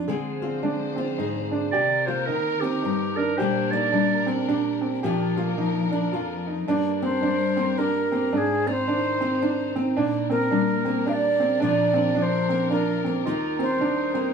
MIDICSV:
0, 0, Header, 1, 6, 480
1, 0, Start_track
1, 0, Tempo, 548948
1, 68, Time_signature, 3, 2, 24, 8
1, 12535, End_track
2, 0, Start_track
2, 0, Title_t, "Flute"
2, 0, Program_c, 0, 73
2, 6143, Note_on_c, 0, 72, 97
2, 6802, Note_on_c, 0, 70, 87
2, 6815, Note_off_c, 0, 72, 0
2, 7284, Note_off_c, 0, 70, 0
2, 7284, Note_on_c, 0, 70, 77
2, 7320, Note_on_c, 0, 68, 84
2, 7329, Note_off_c, 0, 70, 0
2, 7586, Note_on_c, 0, 74, 81
2, 7599, Note_off_c, 0, 68, 0
2, 7627, Note_on_c, 0, 72, 88
2, 7636, Note_off_c, 0, 74, 0
2, 8538, Note_off_c, 0, 72, 0
2, 9016, Note_on_c, 0, 70, 93
2, 9691, Note_on_c, 0, 77, 89
2, 9704, Note_off_c, 0, 70, 0
2, 9728, Note_on_c, 0, 74, 97
2, 9737, Note_off_c, 0, 77, 0
2, 10162, Note_off_c, 0, 74, 0
2, 10171, Note_on_c, 0, 74, 90
2, 10649, Note_off_c, 0, 74, 0
2, 10649, Note_on_c, 0, 74, 78
2, 10686, Note_on_c, 0, 72, 84
2, 10695, Note_off_c, 0, 74, 0
2, 11116, Note_off_c, 0, 72, 0
2, 11121, Note_on_c, 0, 70, 67
2, 11477, Note_off_c, 0, 70, 0
2, 11912, Note_on_c, 0, 72, 78
2, 12535, Note_off_c, 0, 72, 0
2, 12535, End_track
3, 0, Start_track
3, 0, Title_t, "Clarinet"
3, 0, Program_c, 1, 71
3, 1502, Note_on_c, 1, 74, 104
3, 1803, Note_on_c, 1, 72, 87
3, 1816, Note_off_c, 1, 74, 0
3, 1976, Note_on_c, 1, 70, 90
3, 1989, Note_off_c, 1, 72, 0
3, 2279, Note_on_c, 1, 67, 100
3, 2292, Note_off_c, 1, 70, 0
3, 2766, Note_on_c, 1, 70, 94
3, 2779, Note_off_c, 1, 67, 0
3, 2950, Note_on_c, 1, 72, 95
3, 2963, Note_off_c, 1, 70, 0
3, 3246, Note_on_c, 1, 74, 92
3, 3260, Note_off_c, 1, 72, 0
3, 3729, Note_off_c, 1, 74, 0
3, 11590, Note_on_c, 1, 65, 89
3, 12037, Note_off_c, 1, 65, 0
3, 12065, Note_on_c, 1, 63, 80
3, 12535, Note_off_c, 1, 63, 0
3, 12535, End_track
4, 0, Start_track
4, 0, Title_t, "String section"
4, 0, Program_c, 2, 48
4, 73, Note_on_c, 2, 53, 64
4, 76, Note_on_c, 2, 62, 63
4, 79, Note_on_c, 2, 72, 70
4, 1500, Note_off_c, 2, 53, 0
4, 1502, Note_off_c, 2, 62, 0
4, 1503, Note_off_c, 2, 72, 0
4, 1509, Note_on_c, 2, 60, 56
4, 1512, Note_on_c, 2, 51, 62
4, 1514, Note_on_c, 2, 70, 79
4, 2939, Note_off_c, 2, 60, 0
4, 2941, Note_off_c, 2, 51, 0
4, 2942, Note_off_c, 2, 70, 0
4, 2955, Note_on_c, 2, 70, 75
4, 2961, Note_on_c, 2, 62, 63
4, 2962, Note_on_c, 2, 55, 67
4, 2966, Note_on_c, 2, 46, 64
4, 4383, Note_off_c, 2, 70, 0
4, 4386, Note_off_c, 2, 55, 0
4, 4388, Note_off_c, 2, 46, 0
4, 4409, Note_on_c, 2, 53, 71
4, 4411, Note_on_c, 2, 70, 70
4, 5812, Note_off_c, 2, 62, 0
4, 5828, Note_off_c, 2, 70, 0
4, 5829, Note_off_c, 2, 53, 0
4, 5835, Note_on_c, 2, 62, 66
4, 5838, Note_on_c, 2, 70, 73
4, 5840, Note_on_c, 2, 55, 67
4, 7262, Note_off_c, 2, 62, 0
4, 7263, Note_off_c, 2, 70, 0
4, 7264, Note_off_c, 2, 55, 0
4, 7288, Note_on_c, 2, 63, 65
4, 7292, Note_on_c, 2, 72, 67
4, 7293, Note_on_c, 2, 56, 62
4, 8707, Note_off_c, 2, 63, 0
4, 8709, Note_off_c, 2, 56, 0
4, 8709, Note_off_c, 2, 72, 0
4, 8711, Note_on_c, 2, 70, 75
4, 8714, Note_on_c, 2, 55, 63
4, 8719, Note_on_c, 2, 46, 69
4, 8720, Note_on_c, 2, 62, 67
4, 10139, Note_off_c, 2, 55, 0
4, 10141, Note_off_c, 2, 46, 0
4, 10149, Note_on_c, 2, 53, 72
4, 11566, Note_off_c, 2, 62, 0
4, 11575, Note_off_c, 2, 53, 0
4, 11585, Note_on_c, 2, 55, 67
4, 11588, Note_on_c, 2, 63, 62
4, 12535, Note_off_c, 2, 55, 0
4, 12535, Note_off_c, 2, 63, 0
4, 12535, Note_off_c, 2, 70, 0
4, 12535, End_track
5, 0, Start_track
5, 0, Title_t, "Upright piano"
5, 0, Program_c, 3, 0
5, 69, Note_on_c, 3, 68, 78
5, 359, Note_off_c, 3, 68, 0
5, 364, Note_on_c, 3, 65, 61
5, 546, Note_off_c, 3, 65, 0
5, 550, Note_on_c, 3, 62, 76
5, 839, Note_on_c, 3, 60, 58
5, 840, Note_off_c, 3, 62, 0
5, 1024, Note_off_c, 3, 60, 0
5, 1031, Note_on_c, 3, 63, 73
5, 1321, Note_off_c, 3, 63, 0
5, 1323, Note_on_c, 3, 62, 67
5, 1507, Note_off_c, 3, 62, 0
5, 1512, Note_on_c, 3, 67, 96
5, 1802, Note_off_c, 3, 67, 0
5, 1807, Note_on_c, 3, 65, 76
5, 1988, Note_on_c, 3, 63, 79
5, 1989, Note_off_c, 3, 65, 0
5, 2281, Note_off_c, 3, 63, 0
5, 2292, Note_on_c, 3, 60, 61
5, 2469, Note_on_c, 3, 63, 74
5, 2472, Note_off_c, 3, 60, 0
5, 2762, Note_off_c, 3, 63, 0
5, 2771, Note_on_c, 3, 62, 68
5, 2952, Note_off_c, 3, 62, 0
5, 2955, Note_on_c, 3, 67, 97
5, 3245, Note_off_c, 3, 67, 0
5, 3251, Note_on_c, 3, 63, 70
5, 3432, Note_off_c, 3, 63, 0
5, 3432, Note_on_c, 3, 62, 80
5, 3724, Note_off_c, 3, 62, 0
5, 3729, Note_on_c, 3, 60, 73
5, 3911, Note_off_c, 3, 60, 0
5, 3920, Note_on_c, 3, 62, 82
5, 4208, Note_off_c, 3, 62, 0
5, 4208, Note_on_c, 3, 60, 64
5, 4391, Note_off_c, 3, 60, 0
5, 4398, Note_on_c, 3, 67, 86
5, 4687, Note_off_c, 3, 67, 0
5, 4694, Note_on_c, 3, 65, 75
5, 4874, Note_off_c, 3, 65, 0
5, 4876, Note_on_c, 3, 63, 83
5, 5166, Note_off_c, 3, 63, 0
5, 5171, Note_on_c, 3, 62, 63
5, 5353, Note_off_c, 3, 62, 0
5, 5356, Note_on_c, 3, 65, 72
5, 5646, Note_off_c, 3, 65, 0
5, 5656, Note_on_c, 3, 63, 67
5, 5836, Note_off_c, 3, 63, 0
5, 5843, Note_on_c, 3, 62, 93
5, 6130, Note_off_c, 3, 62, 0
5, 6143, Note_on_c, 3, 60, 70
5, 6316, Note_on_c, 3, 62, 75
5, 6319, Note_off_c, 3, 60, 0
5, 6606, Note_off_c, 3, 62, 0
5, 6617, Note_on_c, 3, 60, 69
5, 6796, Note_off_c, 3, 60, 0
5, 6803, Note_on_c, 3, 62, 73
5, 7090, Note_off_c, 3, 62, 0
5, 7099, Note_on_c, 3, 60, 71
5, 7277, Note_off_c, 3, 60, 0
5, 7282, Note_on_c, 3, 62, 85
5, 7569, Note_off_c, 3, 62, 0
5, 7578, Note_on_c, 3, 60, 63
5, 7756, Note_off_c, 3, 60, 0
5, 7760, Note_on_c, 3, 62, 80
5, 8048, Note_off_c, 3, 62, 0
5, 8048, Note_on_c, 3, 60, 67
5, 8231, Note_off_c, 3, 60, 0
5, 8236, Note_on_c, 3, 62, 73
5, 8525, Note_off_c, 3, 62, 0
5, 8531, Note_on_c, 3, 60, 72
5, 8712, Note_off_c, 3, 60, 0
5, 8715, Note_on_c, 3, 62, 99
5, 9004, Note_on_c, 3, 60, 76
5, 9005, Note_off_c, 3, 62, 0
5, 9188, Note_off_c, 3, 60, 0
5, 9190, Note_on_c, 3, 62, 78
5, 9482, Note_off_c, 3, 62, 0
5, 9485, Note_on_c, 3, 60, 68
5, 9669, Note_off_c, 3, 60, 0
5, 9671, Note_on_c, 3, 62, 77
5, 9962, Note_off_c, 3, 62, 0
5, 9966, Note_on_c, 3, 60, 72
5, 10143, Note_on_c, 3, 62, 93
5, 10148, Note_off_c, 3, 60, 0
5, 10436, Note_on_c, 3, 60, 77
5, 10438, Note_off_c, 3, 62, 0
5, 10623, Note_off_c, 3, 60, 0
5, 10625, Note_on_c, 3, 62, 82
5, 10918, Note_off_c, 3, 62, 0
5, 10924, Note_on_c, 3, 60, 65
5, 11107, Note_off_c, 3, 60, 0
5, 11107, Note_on_c, 3, 62, 74
5, 11399, Note_off_c, 3, 62, 0
5, 11405, Note_on_c, 3, 60, 64
5, 11587, Note_off_c, 3, 60, 0
5, 11589, Note_on_c, 3, 63, 87
5, 11880, Note_off_c, 3, 63, 0
5, 11882, Note_on_c, 3, 60, 70
5, 12065, Note_off_c, 3, 60, 0
5, 12074, Note_on_c, 3, 62, 79
5, 12362, Note_off_c, 3, 62, 0
5, 12366, Note_on_c, 3, 60, 65
5, 12535, Note_off_c, 3, 60, 0
5, 12535, End_track
6, 0, Start_track
6, 0, Title_t, "Steel-string acoustic guitar"
6, 0, Program_c, 4, 25
6, 67, Note_on_c, 4, 50, 64
6, 74, Note_on_c, 4, 56, 52
6, 81, Note_on_c, 4, 60, 54
6, 85, Note_on_c, 4, 65, 53
6, 95, Note_on_c, 4, 68, 58
6, 365, Note_off_c, 4, 60, 0
6, 369, Note_on_c, 4, 60, 52
6, 537, Note_off_c, 4, 56, 0
6, 547, Note_on_c, 4, 56, 56
6, 845, Note_off_c, 4, 65, 0
6, 856, Note_on_c, 4, 65, 61
6, 1034, Note_off_c, 4, 68, 0
6, 1035, Note_on_c, 4, 44, 60
6, 1045, Note_on_c, 4, 68, 61
6, 1489, Note_off_c, 4, 50, 0
6, 1489, Note_off_c, 4, 56, 0
6, 1492, Note_off_c, 4, 44, 0
6, 1492, Note_off_c, 4, 60, 0
6, 1495, Note_off_c, 4, 65, 0
6, 1497, Note_off_c, 4, 68, 0
6, 1522, Note_on_c, 4, 48, 65
6, 1821, Note_on_c, 4, 58, 53
6, 1998, Note_off_c, 4, 48, 0
6, 2000, Note_on_c, 4, 51, 60
6, 2307, Note_on_c, 4, 63, 60
6, 2483, Note_off_c, 4, 63, 0
6, 2485, Note_on_c, 4, 43, 63
6, 2492, Note_on_c, 4, 63, 53
6, 2938, Note_off_c, 4, 43, 0
6, 2942, Note_off_c, 4, 63, 0
6, 2958, Note_off_c, 4, 51, 0
6, 2966, Note_on_c, 4, 46, 63
6, 2971, Note_on_c, 4, 55, 57
6, 2975, Note_off_c, 4, 58, 0
6, 2978, Note_on_c, 4, 58, 56
6, 2986, Note_on_c, 4, 62, 53
6, 2990, Note_on_c, 4, 67, 61
6, 3259, Note_off_c, 4, 58, 0
6, 3263, Note_on_c, 4, 58, 62
6, 3427, Note_off_c, 4, 55, 0
6, 3438, Note_on_c, 4, 55, 61
6, 3739, Note_off_c, 4, 62, 0
6, 3743, Note_on_c, 4, 62, 61
6, 3911, Note_off_c, 4, 46, 0
6, 3914, Note_off_c, 4, 67, 0
6, 3921, Note_on_c, 4, 46, 56
6, 3927, Note_on_c, 4, 67, 64
6, 4376, Note_off_c, 4, 55, 0
6, 4377, Note_off_c, 4, 46, 0
6, 4379, Note_off_c, 4, 67, 0
6, 4398, Note_on_c, 4, 46, 68
6, 4404, Note_on_c, 4, 53, 61
6, 4406, Note_off_c, 4, 58, 0
6, 4410, Note_on_c, 4, 58, 54
6, 4413, Note_off_c, 4, 62, 0
6, 4416, Note_on_c, 4, 62, 60
6, 4422, Note_on_c, 4, 65, 73
6, 4690, Note_off_c, 4, 58, 0
6, 4700, Note_on_c, 4, 58, 56
6, 4867, Note_off_c, 4, 53, 0
6, 4878, Note_on_c, 4, 53, 65
6, 5171, Note_off_c, 4, 62, 0
6, 5181, Note_on_c, 4, 62, 62
6, 5355, Note_off_c, 4, 65, 0
6, 5358, Note_off_c, 4, 46, 0
6, 5358, Note_on_c, 4, 41, 63
6, 5366, Note_on_c, 4, 65, 68
6, 5815, Note_off_c, 4, 41, 0
6, 5816, Note_off_c, 4, 53, 0
6, 5819, Note_off_c, 4, 58, 0
6, 5819, Note_off_c, 4, 62, 0
6, 5820, Note_off_c, 4, 65, 0
6, 5836, Note_on_c, 4, 43, 61
6, 5843, Note_on_c, 4, 55, 52
6, 5848, Note_on_c, 4, 58, 55
6, 5854, Note_on_c, 4, 62, 54
6, 5863, Note_on_c, 4, 67, 57
6, 6131, Note_off_c, 4, 62, 0
6, 6141, Note_on_c, 4, 62, 53
6, 6310, Note_off_c, 4, 55, 0
6, 6321, Note_on_c, 4, 55, 56
6, 6611, Note_off_c, 4, 58, 0
6, 6622, Note_on_c, 4, 58, 58
6, 6798, Note_off_c, 4, 67, 0
6, 6809, Note_on_c, 4, 67, 62
6, 7093, Note_off_c, 4, 58, 0
6, 7104, Note_on_c, 4, 58, 51
6, 7254, Note_off_c, 4, 43, 0
6, 7257, Note_off_c, 4, 55, 0
6, 7259, Note_off_c, 4, 62, 0
6, 7260, Note_off_c, 4, 58, 0
6, 7261, Note_off_c, 4, 67, 0
6, 7277, Note_on_c, 4, 44, 72
6, 7583, Note_on_c, 4, 63, 65
6, 7766, Note_on_c, 4, 51, 54
6, 8060, Note_on_c, 4, 60, 57
6, 8230, Note_off_c, 4, 63, 0
6, 8241, Note_on_c, 4, 63, 56
6, 8525, Note_off_c, 4, 60, 0
6, 8536, Note_on_c, 4, 60, 52
6, 8696, Note_off_c, 4, 60, 0
6, 8696, Note_off_c, 4, 63, 0
6, 8715, Note_off_c, 4, 44, 0
6, 8719, Note_on_c, 4, 46, 72
6, 8721, Note_off_c, 4, 51, 0
6, 9018, Note_on_c, 4, 62, 55
6, 9194, Note_on_c, 4, 55, 60
6, 9493, Note_on_c, 4, 58, 56
6, 9680, Note_on_c, 4, 67, 60
6, 9970, Note_off_c, 4, 58, 0
6, 9974, Note_on_c, 4, 58, 52
6, 10132, Note_off_c, 4, 55, 0
6, 10134, Note_off_c, 4, 46, 0
6, 10135, Note_off_c, 4, 67, 0
6, 10136, Note_off_c, 4, 62, 0
6, 10154, Note_on_c, 4, 46, 72
6, 10160, Note_on_c, 4, 53, 56
6, 10163, Note_off_c, 4, 58, 0
6, 10167, Note_on_c, 4, 58, 64
6, 10174, Note_on_c, 4, 62, 53
6, 10180, Note_on_c, 4, 65, 67
6, 10444, Note_off_c, 4, 62, 0
6, 10454, Note_on_c, 4, 62, 52
6, 10622, Note_off_c, 4, 53, 0
6, 10632, Note_on_c, 4, 53, 53
6, 10929, Note_off_c, 4, 58, 0
6, 10933, Note_on_c, 4, 58, 57
6, 11111, Note_off_c, 4, 65, 0
6, 11121, Note_on_c, 4, 65, 60
6, 11410, Note_off_c, 4, 58, 0
6, 11420, Note_on_c, 4, 58, 51
6, 11569, Note_off_c, 4, 53, 0
6, 11570, Note_off_c, 4, 46, 0
6, 11573, Note_off_c, 4, 62, 0
6, 11574, Note_off_c, 4, 65, 0
6, 11576, Note_off_c, 4, 58, 0
6, 11596, Note_on_c, 4, 39, 68
6, 11602, Note_on_c, 4, 51, 61
6, 11609, Note_on_c, 4, 58, 59
6, 11614, Note_on_c, 4, 63, 56
6, 11621, Note_on_c, 4, 67, 68
6, 11886, Note_off_c, 4, 63, 0
6, 11890, Note_on_c, 4, 63, 54
6, 12066, Note_off_c, 4, 51, 0
6, 12076, Note_on_c, 4, 51, 57
6, 12362, Note_off_c, 4, 58, 0
6, 12372, Note_on_c, 4, 58, 57
6, 12535, Note_off_c, 4, 39, 0
6, 12535, Note_off_c, 4, 51, 0
6, 12535, Note_off_c, 4, 58, 0
6, 12535, Note_off_c, 4, 63, 0
6, 12535, Note_off_c, 4, 67, 0
6, 12535, End_track
0, 0, End_of_file